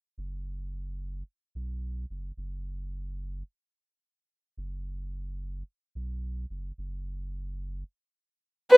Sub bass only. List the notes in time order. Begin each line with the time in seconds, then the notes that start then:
0.18 F#1
1.55 B1
2.10 F#1
2.37 F#1
4.57 F#1
5.95 B1
6.50 F#1
6.78 F#1